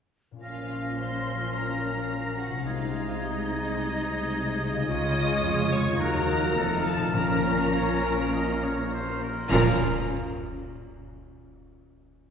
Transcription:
0.31 A#2 C#4
0.36 F4 A#4
0.41 A#1 A#2 F3 C#4 F4 F5 A#6
0.99 C5 C6
1.53 A#4 A#5
2.37 F#4 F#5
2.47 C3
2.52 D#4
2.56 G#4
2.63 C2 C3 G#3 D#4 F4 D#5 F5 G#6
3.20 D#4 D#5
4.70 C#3
4.74 C#4
4.79 F4
4.83 C#3 G#3 F4 G#4
4.87 C#2 G#3 F4 C#5 D#5 D#6
5.42 F1 F2
5.71 C#5 C#6
5.82 D#3
5.87 A#3
5.91 D#4
5.96 D#2 F#3 D#4 F#4 A#5
6.00 A#3 D#4 F#4 A#4 F#6
6.39 F3
6.43 A3
6.47 D#4
6.52 F4
6.56 F1 F2 F3 A3 D#4 A4 F6
6.84 A4 A5
6.97 A#2
7.01 A#3
7.06 C#4
7.10 A#2 A#3 C#4 F4
7.14 A#1 A#2 F3 C#4 A#4 A#5
7.75 C#5
8.05 A#4
8.34 D#5
8.64 C#5
8.94 C5
9.24 A#4
9.48 A#1 A#2 F3 A#3 C#4 F4 A#4 A#5, concert bass drum, crash
9.52 F4 A#4 C#5 F6

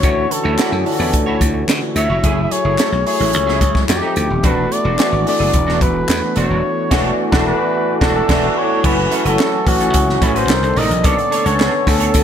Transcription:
Already playing: A3 F#4 C#5
0.02 D2 D3 E3 C#4 D4 E4 F#4 C#5, kick, closed hi-hat
0.30 A4, muted clean electric guitar stroke, closed hi-hat
0.44 D2 E4 F#4 C#5
0.58 E3 C#4 D4 E4 F#4 D5, snare, clap, closed hi-hat
0.71 F#2, muted clean electric guitar stroke
0.80 G#4
0.85 E3 C#4 D4 F4 A4, muted clean electric guitar stroke, open hi-hat
0.93 F#4
0.99 E2 E4 F#4 D5
1.13 D2, muted clean electric guitar stroke, kick, closed hi-hat
1.26 E4 F#4 C#5
1.40 D2, muted clean electric guitar stroke, kick, closed hi-hat
1.54 muted clean electric guitar stroke
1.68 D3, muted clean electric guitar stroke, snare, clap, closed hi-hat
1.82 muted clean electric guitar stroke
1.96 D2 E4 F#4 C#5 E5, closed hi-hat
2.09 F1 E4 F#4 C#5
2.23 F#1 F#3 A3 E4 G#4, kick, closed hi-hat
2.51 F#3 A3 E4 G#4 C#5, muted clean electric guitar stroke, closed hi-hat
2.65 F#1 A3 E4 G#4
2.78 A3 E4 A4, snare, clap, closed hi-hat
2.92 B1, muted clean electric guitar stroke
3.06 F#3 A3 E4 G#4 C#5, muted clean electric guitar stroke, open hi-hat
3.19 A1 A3 E4 G#4
3.33 C#2, muted clean electric guitar stroke, closed hi-hat
3.46 A3 E4 G#4, snare
3.61 C#2, muted clean electric guitar stroke, kick, closed hi-hat
3.74 muted clean electric guitar stroke, kick, snare
3.88 F2 F3 A3 C4 D#4 F#4 G4, muted clean electric guitar stroke, snare, clap, closed hi-hat
3.96 G4
4.02 A3 D#4 G4
4.15 D2, muted clean electric guitar stroke, closed hi-hat
4.29 D#1, muted clean electric guitar stroke
4.43 E1 E3 A3 B3 D4 F#4 B4, kick, closed hi-hat
4.71 D5, muted clean electric guitar stroke, closed hi-hat
4.85 E1 A3 D4 F#4
4.98 E3 A3 D4 F#4 G#4, snare, clap, closed hi-hat
5.12 G#1, muted clean electric guitar stroke
5.25 E3 A3 D4 A4 D5, muted clean electric guitar stroke, snare, open hi-hat
5.39 F#1 A3 D4 G#4
5.53 E1, muted clean electric guitar stroke, kick, closed hi-hat
5.67 A3 D4 F#4, snare
5.80 E1 B4, muted clean electric guitar stroke, kick, closed hi-hat
5.95 muted clean electric guitar stroke
6.08 E2, muted clean electric guitar stroke, snare, clap, closed hi-hat
6.22 muted clean electric guitar stroke
6.36 E1 A3 D4 F#4 C#5, closed hi-hat
6.50 D#1 A3 D4 F#4
6.90 E1 E3 A3 D4 F#4, kick, snare, crash
7.31 E1 E3 A3 D4 F#4, kick, snare
7.47 B4
8.01 E1 E3 A3 D4 F#4 A4, kick, snare
8.16 A4
8.28 E1 E3 A3 D4 F#4, kick, snare, crash
8.58 C#5
8.84 F#1 E3 F#3 A3 C#4 E4 F#4 A4 B4 G#5, kick, crash
8.97 muted clean electric guitar stroke
9.11 C#4 E4 A4, closed hi-hat
9.19 B4
9.25 F#1 E3 A3 C#4 E4 F#4 A4 B4, closed hi-hat
9.39 C#4 E4 A4, snare, clap
9.53 muted clean electric guitar stroke
9.66 A1 E3 A3 C#4 F#4, muted clean electric guitar stroke, kick, open hi-hat
9.80 C#4 E4 A4, closed hi-hat
9.94 C#2, muted clean electric guitar stroke, kick, closed hi-hat
10.08 muted clean electric guitar stroke, snare
10.21 A1 C#4 E4 A4 C#5, kick, closed hi-hat
10.35 E3 A3 C#4 E4 F#4 B4 C5, closed hi-hat
10.49 C2 C3 D#3 G3 A#3 C4 D4 D#4 A#4, muted clean electric guitar stroke, snare, clap
10.63 C2 D#3 C4 D4 A4, muted clean electric guitar stroke, closed hi-hat
10.76 A1 D#4 A#4 D5 D#5, open hi-hat
10.90 A#1, muted clean electric guitar stroke, closed hi-hat
11.03 B1 D3 A3 B3 C#4 D4 A4 C#5 D5, kick, closed hi-hat
11.17 muted clean electric guitar stroke, closed hi-hat
11.31 D4 A4 C#5, closed hi-hat
11.44 C#2 D3 B3 C#4 D4 A4 C#5, closed hi-hat
11.58 D4 A4 C#5, snare, clap
11.72 muted clean electric guitar stroke
11.86 D2 D3 B3 C#4 A4, muted clean electric guitar stroke, kick, snare, open hi-hat
12.00 D4 A4 C#5, closed hi-hat
12.14 D2, muted clean electric guitar stroke, kick, closed hi-hat

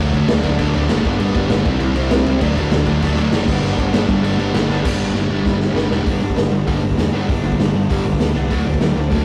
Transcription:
Already playing: D3
0.00 F#3 A3 D4
0.13 D2 D3 F#3 A3 D4, kick, crash
0.28 D2 D3 F#3 A3 D4, snare, crash
0.43 D2 D3 F#3 A3 D4, kick, crash
0.59 D2 D3 F#3 A3 D4, kick, crash
0.74 D2 D3 F#3 A3 D4, crash
0.89 F#1 D3 F#3 A3 D4, snare, crash
1.04 G1 G2 D3 G3 B3 D4, kick, crash
1.19 G1 G2 D3 G3 B3 D4, crash
1.34 G1 G2 D3 G3 B3 D4, kick, crash
1.49 G1 G2 D3 G3 B3 D4, snare, crash
1.65 C2 C3 G3 C4 E4, kick, crash
1.79 C2 C3 G3 C4 E4, crash
1.95 C2 C3 G3 C4 E4, crash
2.10 C2 C3 G3 C4 E4, snare, crash
2.26 C#2 C3 G3 C4 E4, crash
2.40 D2 D3 F#3 A3 D4, kick, crash
2.55 D2 D3 F#3 A3 D4, kick, crash
2.70 D2 D3 F#3 A3 D4, snare, crash
2.86 D2 D3 F#3 A3 D4, kick, crash
3.01 D2 D3 F#3 A3 D4, kick, crash
3.17 D2 D3 F#3 A3 D4, crash
3.32 F#1 D3 F#3 A3 D4, snare, crash
3.47 G1 G2 D3 G3 B3 D4, kick, crash
3.62 G1 G2 D3 G3 B3 D4, crash
3.77 G1 G2 D3 G3 B3 D4, kick, crash
3.92 G1 G2 D3 G3 B3 D4, snare, crash
4.07 G1 G2 D3 G3 B3 D4, kick, crash
4.23 G1 G2 D3 G3 B3 D4, crash
4.37 G1 G2 D3 G3 B3 D4, crash
4.54 G1 G2 D3 G3 B3 D4, snare, crash
4.68 G1 G2 D3 G3 B3 D4, snare
4.84 G1 G2 D3 G3 B3 D4, kick, snare, crash
5.00 G1
5.14 G1 G2 D3 G3 B3 D4, snare
5.30 G1 G2 D3 G3 B3 D4
5.45 G1 G2 D3 G3 B3 D4, kick, snare
5.61 snare
5.75 G1 G2 D3 G3 B3 D4, snare
5.91 E1 G2 D3 G3 B3 D4, snare
6.06 G1 G2 D3 G3 B3 D4, kick, open hi-hat
6.21 G1 G2 D3
6.29 kick
6.36 G1 G2 D3, snare, open hi-hat
6.51 G1 G2 D3
6.66 G1 G2 D3 G3, kick, open hi-hat
6.83 G1 G2 D3
6.91 kick
6.98 E2 G2 D3, snare, open hi-hat
7.13 G2 D3 G3 B3 D4
7.28 G1 G2 D3 G3 B3 D4, kick, open hi-hat
7.44 G1 G2 D3
7.52 kick
7.60 G1 G2 D3, snare, open hi-hat
7.75 G1 G2 D3
7.90 G1 G2 D3 G3, kick, open hi-hat
8.05 G1 G2 D3
8.13 kick
8.20 D2 G2 D3, snare, open hi-hat
8.35 C2 G2 D3 G3 B3 D4
8.50 D2 D3 F#3 A3, kick, open hi-hat
8.55 D4
8.66 D2 D3 F#3
8.74 kick
8.81 D2 D3 F#3, snare, open hi-hat
8.96 D2 D3 F#3
9.11 D2 D3 F#3 A3, kick, open hi-hat

